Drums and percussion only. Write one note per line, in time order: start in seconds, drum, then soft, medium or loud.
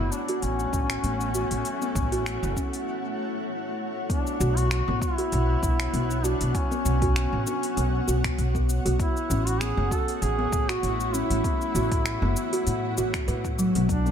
0.12 cabasa medium
0.28 open hi-hat medium
0.28 cabasa soft
0.42 open hi-hat soft
0.42 cabasa soft
0.59 cabasa soft
0.73 kick loud
0.73 cabasa medium
0.90 finger snap medium
0.90 open hi-hat medium
0.90 cabasa soft
1.04 open hi-hat soft
1.04 cabasa soft
1.21 cabasa soft
1.35 cabasa medium
1.51 open hi-hat medium
1.51 cabasa soft
1.65 open hi-hat soft
1.65 cabasa soft
1.82 cabasa soft
1.95 kick medium
1.95 cabasa medium
2.12 open hi-hat medium
2.12 cabasa soft
2.26 finger snap medium
2.26 open hi-hat soft
2.26 cabasa soft
2.43 cabasa soft
2.57 kick medium
2.57 cabasa medium
2.73 open hi-hat medium
2.73 cabasa soft
4.10 kick loud
4.10 open hi-hat soft
4.10 cabasa soft
4.27 cabasa soft
4.41 cabasa medium
4.57 open hi-hat medium
4.57 cabasa soft
4.71 finger snap medium
4.71 open hi-hat soft
4.71 cabasa soft
5.02 kick loud
5.02 cabasa medium
5.18 open hi-hat medium
5.18 cabasa soft
5.32 open hi-hat soft
5.32 cabasa soft
5.63 kick loud
5.63 cabasa medium
5.80 finger snap medium
5.80 open hi-hat medium
5.80 cabasa soft
5.94 open hi-hat soft
5.94 cabasa soft
6.11 cabasa soft
6.25 cabasa medium
6.41 open hi-hat medium
6.41 cabasa soft
6.55 kick loud
6.55 open hi-hat soft
6.55 cabasa soft
6.72 cabasa soft
6.86 cabasa medium
7.02 kick loud
7.02 open hi-hat medium
7.02 cabasa soft
7.16 finger snap medium
7.16 open hi-hat soft
7.16 cabasa soft
7.47 cabasa medium
7.63 open hi-hat medium
7.63 cabasa soft
7.77 open hi-hat soft
7.77 cabasa soft
8.08 cabasa medium
8.24 finger snap medium
8.24 kick loud
8.24 open hi-hat medium
8.24 cabasa soft
8.38 open hi-hat soft
8.38 cabasa soft
8.55 kick medium
8.55 cabasa soft
8.69 cabasa medium
8.86 open hi-hat medium
8.86 cabasa soft
8.99 kick loud
8.99 open hi-hat soft
8.99 cabasa soft
9.17 cabasa soft
9.31 cabasa medium
9.47 open hi-hat medium
9.47 cabasa soft
9.61 finger snap medium
9.61 open hi-hat soft
9.61 cabasa soft
9.91 kick loud
9.91 cabasa medium
10.08 open hi-hat medium
10.08 cabasa soft
10.22 open hi-hat soft
10.22 cabasa soft
10.52 kick loud
10.52 cabasa medium
10.69 finger snap medium
10.69 open hi-hat medium
10.69 cabasa soft
10.83 open hi-hat soft
10.83 cabasa soft
11.00 cabasa soft
11.14 cabasa medium
11.31 open hi-hat medium
11.31 cabasa soft
11.44 kick loud
11.44 open hi-hat soft
11.44 cabasa soft
11.61 cabasa soft
11.75 cabasa medium
11.92 kick loud
11.92 open hi-hat medium
11.92 cabasa soft
12.06 finger snap medium
12.06 open hi-hat soft
12.06 cabasa soft
12.37 cabasa medium
12.53 open hi-hat medium
12.53 cabasa soft
12.67 open hi-hat soft
12.67 cabasa soft
12.98 cabasa medium
13.14 finger snap medium
13.14 kick loud
13.14 open hi-hat medium
13.14 cabasa soft
13.28 open hi-hat soft
13.28 cabasa soft
13.45 kick medium
13.45 cabasa soft
13.59 cabasa medium
13.75 open hi-hat medium
13.75 cabasa soft
13.89 kick loud
13.89 open hi-hat soft
13.89 cabasa soft
14.06 cabasa soft